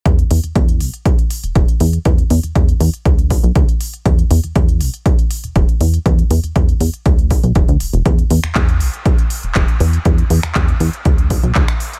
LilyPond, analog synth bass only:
\new Staff \with { instrumentName = "Analog synth bass" } { \clef bass \time 4/4 \key b \phrygian \tempo 4 = 120 e,16 r16 e,16 e,16 e,8 b,,16 r4 e,,16 e,,16 r16 e,16 r16 | e,16 r16 e,16 e,16 e,16 r16 e,16 r16 d,8. b,,16 d,16 r8. | e,16 r16 e,16 e,16 e,8 b,,16 r4 e,,16 e,,16 r16 e,16 r16 | e,16 r16 e,16 r16 e,16 r16 e,16 r16 d,8. b,,16 e,,16 d,16 e,,16 e,,16 |
e,16 r16 e,16 e,16 e,8 b,,16 r4 e,,16 e,,16 r16 e,16 r16 | e,16 r16 e,16 r16 e,16 r16 e,16 r16 d,8. b,,16 d,16 r8. | }